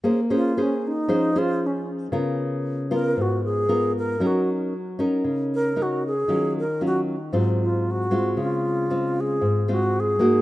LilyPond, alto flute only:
\new Staff \with { instrumentName = "Alto flute" } { \time 4/4 \key bes \minor \tempo 4 = 115 r8 f'8 des'8 ees'4 f'8 des'8 r8 | r4. bes'8 ges'8 aes'4 bes'8 | ges'8 r2 bes'8 ges'8 aes'8~ | aes'8 bes'8 ges'8 r4 f'8 ges'4 |
f'4. aes'4 ges'8 aes'4 | }